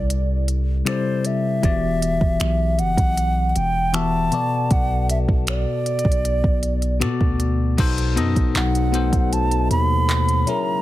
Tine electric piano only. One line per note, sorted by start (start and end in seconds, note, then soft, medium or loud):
0.00 0.85 C3 medium
0.00 0.86 G3 medium
0.00 0.86 E4 medium
0.00 0.87 A4 medium
0.00 0.88 D5 medium
0.85 1.41 C3 medium
0.85 1.41 G3 medium
0.85 1.42 E4 medium
0.85 1.42 A4 medium
0.85 1.42 D5 medium
1.62 2.73 E3 medium
1.62 2.74 B3 medium
1.62 2.74 F#4 medium
1.62 2.74 G4 medium
1.62 2.75 D5 medium
3.92 4.32 E3 medium
3.92 4.31 B3 medium
3.92 4.31 F#4 medium
3.92 4.33 G4 medium
3.92 4.33 E5 medium
4.31 5.55 B2 medium
4.31 5.55 B3 medium
4.31 5.56 F#4 medium
4.31 5.56 A4 medium
4.31 5.56 D5 medium
7.00 7.56 B2 medium
7.00 7.57 B3 medium
7.00 7.57 F#4 medium
7.00 7.57 A4 medium
7.00 7.58 D5 loud
7.77 8.05 B2 medium
7.77 8.06 B3 medium
7.77 8.06 D#4 medium
7.77 8.07 A4 medium
7.77 8.07 C5 loud
8.15 8.72 B2 medium
8.15 8.72 B3 medium
8.15 8.72 D#4 medium
8.15 8.73 A4 medium
8.15 8.73 D#5 medium
8.92 10.04 B2 medium
8.92 10.04 B3 medium
8.92 10.05 D#4 medium
8.92 10.05 A4 medium
8.92 10.05 C5 medium
10.46 10.82 F#3 medium
10.46 10.82 C#4 medium
10.46 10.82 E4 medium
10.46 10.82 G#4 medium
10.46 10.82 A#4 medium